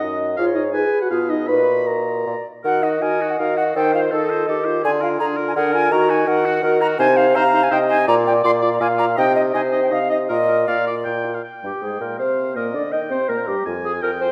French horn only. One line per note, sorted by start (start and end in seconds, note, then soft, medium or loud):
0.00 0.18 D#4 medium
0.38 0.57 F4 loud
0.56 0.73 D#4 medium
0.74 1.04 G#4 medium
1.02 1.10 F#4 medium
1.10 1.31 F4 medium
1.29 1.48 D#4 medium
1.49 1.89 B4 loud
1.88 2.46 A#4 medium
2.64 2.85 F#4 medium
2.83 3.03 D#4 medium
3.02 3.22 F#4 medium
3.21 3.39 D#4 medium
3.39 3.59 F#4 medium
3.58 3.75 D#4 medium
3.76 3.96 D#4 medium
3.94 4.14 F4 medium
4.13 4.32 D#4 medium
4.31 4.48 F4 medium
4.48 4.67 D#4 medium
4.66 4.83 F4 medium
4.84 5.04 D4 medium
5.02 5.22 F4 medium
5.20 5.40 D4 medium
5.38 5.55 F4 medium
5.56 5.75 D4 medium
5.74 5.91 F4 medium
5.92 6.11 F#4 medium
6.09 6.28 D#4 medium
6.27 6.47 F#4 medium
6.45 6.63 D#4 medium
6.63 6.83 F#4 medium
6.81 6.99 D#4 medium
7.00 7.08 D#4 medium
7.18 7.26 D#4 medium
7.35 7.44 D#4 medium
7.54 7.62 D#4 medium
7.72 7.80 D#4 medium
7.90 7.98 D#4 medium
8.08 8.16 F4 medium
8.27 8.35 F4 medium
8.44 8.52 F4 medium
8.62 8.71 F4 medium
8.80 8.89 F4 medium
8.99 9.07 F4 medium
9.17 9.26 D#4 medium
9.36 9.44 D#4 medium
9.54 9.62 D#4 medium
9.72 9.81 D#4 medium
9.91 9.99 D#4 medium
10.10 10.18 D#4 medium
10.29 10.38 F4 medium
10.48 10.57 F4 medium
10.68 10.76 F4 medium
10.87 10.95 F4 medium
11.05 11.14 F4 medium
11.24 11.33 F4 medium
11.63 11.71 G3 soft
11.82 12.00 G#3 medium
12.00 12.20 A#3 medium
12.19 12.58 C4 medium
12.56 12.73 A#3 medium
12.74 12.82 D4 medium
12.92 13.00 D#4 medium
13.10 13.18 C4 medium
13.29 13.37 A#3 medium
13.47 13.65 G3 medium
13.66 13.74 F4 medium
13.84 13.93 F4 medium
14.02 14.11 F4 soft
14.20 14.29 F4 medium